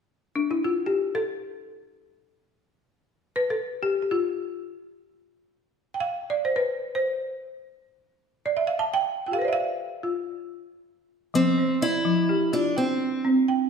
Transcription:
0.36 0.51 D4 medium
0.51 0.65 E4 medium
0.64 0.86 F4 medium
0.86 1.16 G4 medium
1.15 2.30 A4 medium
3.36 3.51 B4 medium
3.50 3.80 A4 medium
3.83 4.01 G4 medium
4.02 4.10 G4 soft
4.11 4.84 F4 medium
5.94 6.02 G5 medium
6.00 6.33 F5 medium
6.30 6.48 D5 medium
6.45 6.56 C5 medium
6.56 6.98 B4 medium
6.95 7.53 C5 medium
8.46 8.57 D5 medium
8.57 8.68 E5 medium
8.67 8.80 F5 medium
8.79 8.94 A5 medium
8.94 9.25 G5 medium
9.26 9.43 F4 soft
9.26 9.32 G5 medium
9.31 9.46 G4 soft
9.31 9.50 A4 soft
9.31 9.51 F5 medium
9.38 9.53 B4 soft
9.38 9.57 C5 medium
9.45 9.60 D5 soft
9.45 9.63 E5 medium
9.53 9.99 F5 medium
10.03 11.12 F4 medium
11.34 11.82 F3 medium
11.34 11.84 C4 medium
11.58 12.30 C5 medium
11.82 12.53 E4 medium
11.82 12.53 D5 medium
12.05 12.53 F3 medium
12.29 13.01 G4 medium
12.53 12.77 D4 medium
12.53 12.77 F4 medium
12.77 13.27 C4 medium
12.77 13.47 G5 medium
13.25 13.70 C4 medium
13.48 13.70 G5 medium

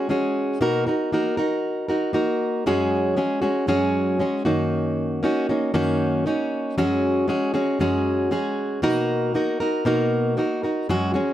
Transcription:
0.09 0.60 G#3 medium
0.09 0.61 C#4 medium
0.09 0.62 F#4 medium
0.09 0.61 G#4 medium
0.61 0.86 B2 medium
0.61 0.86 A#3 medium
0.61 0.86 D#4 medium
0.61 0.87 F#4 medium
0.61 0.85 A#4 medium
0.87 1.12 D#4 soft
0.87 1.12 F#4 soft
0.87 1.12 A#4 medium
1.12 1.38 A#3 medium
1.12 1.38 D#4 medium
1.12 1.37 F#4 medium
1.12 1.36 A#4 medium
1.37 1.90 D#4 medium
1.37 1.89 F#4 medium
1.37 1.87 A#4 medium
1.89 2.13 D#4 soft
1.89 2.13 F#4 medium
1.89 2.14 A#4 medium
2.13 2.65 A#3 medium
2.13 2.66 D#4 medium
2.13 2.67 F#4 medium
2.13 2.66 A#4 medium
2.66 3.17 F#2 medium
2.66 3.20 F#3 medium
2.66 3.15 G#3 medium
2.66 3.17 C#4 medium
2.66 3.18 F#4 medium
2.66 3.16 G#4 loud
3.17 3.43 G#3 medium
3.17 3.42 C#4 medium
3.17 3.40 F#4 medium
3.17 3.41 G#4 medium
3.42 3.67 G#3 medium
3.42 3.67 C#4 medium
3.42 3.67 F#4 medium
3.42 3.67 G#4 medium
3.67 4.19 F#2 medium
3.67 4.22 F#3 medium
3.67 4.18 G#3 medium
3.67 4.20 C#4 medium
3.67 4.21 F#4 medium
3.67 4.20 G#4 medium
4.19 4.45 G#3 medium
4.19 4.45 C#4 medium
4.19 4.44 F#4 medium
4.19 4.45 G#4 medium
4.45 5.23 F#2 soft
4.45 5.23 D#3 medium
4.45 5.22 A#3 medium
4.45 5.23 C#4 medium
4.45 5.23 D#4 medium
4.45 5.25 F#4 medium
5.23 5.48 A#3 medium
5.23 5.48 C#4 medium
5.23 5.49 D#4 medium
5.23 5.48 F#4 medium
5.49 5.73 A#3 soft
5.49 5.73 C#4 medium
5.49 5.73 D#4 medium
5.49 5.74 F#4 medium
5.74 6.26 F#2 medium
5.74 6.25 D#3 medium
5.74 6.25 A#3 medium
5.74 6.27 C#4 medium
5.74 6.26 D#4 medium
5.74 6.27 F#4 medium
6.26 6.77 A#3 medium
6.26 6.78 C#4 medium
6.26 6.78 D#4 medium
6.26 6.78 F#4 medium
6.78 7.29 F#2 medium
6.78 7.31 F#3 medium
6.78 7.26 G#3 medium
6.78 7.28 C#4 medium
6.78 7.29 F#4 loud
6.78 7.28 G#4 medium
7.28 7.54 G#3 medium
7.28 7.54 C#4 medium
7.28 7.53 F#4 medium
7.28 7.53 G#4 medium
7.54 7.80 G#3 medium
7.54 7.80 C#4 medium
7.54 7.80 F#4 medium
7.54 7.80 G#4 medium
7.79 8.31 F#2 medium
7.79 8.34 F#3 medium
7.79 8.30 G#3 medium
7.79 8.30 C#4 medium
7.79 8.32 F#4 medium
7.79 8.31 G#4 medium
8.31 8.82 G#3 medium
8.31 8.83 C#4 medium
8.31 8.83 F#4 medium
8.31 8.83 G#4 medium
8.82 9.34 B2 medium
8.82 9.33 A#3 medium
8.82 9.34 D#4 medium
8.82 9.35 F#4 medium
8.82 9.35 A#4 loud
9.34 9.60 A#3 medium
9.34 9.60 D#4 medium
9.34 9.60 F#4 medium
9.34 9.59 A#4 medium
9.60 9.85 D#4 soft
9.60 9.86 F#4 medium
9.60 9.86 A#4 medium
9.85 10.37 B2 medium
9.85 10.36 A#3 medium
9.85 10.36 D#4 medium
9.85 10.38 F#4 medium
9.85 10.37 A#4 medium
10.37 10.63 A#3 medium
10.37 10.63 D#4 medium
10.37 10.63 F#4 medium
10.37 10.62 A#4 medium
10.63 10.89 D#4 soft
10.63 10.89 F#4 soft
10.63 10.89 A#4 soft
10.89 11.14 F#2 medium
10.89 11.14 F#3 medium
10.89 11.14 G#3 medium
10.89 11.14 C#4 medium
10.89 11.13 F#4 loud
10.89 11.14 G#4 medium
11.14 11.33 G#3 medium
11.14 11.33 C#4 soft
11.14 11.33 F#4 medium
11.14 11.33 G#4 medium

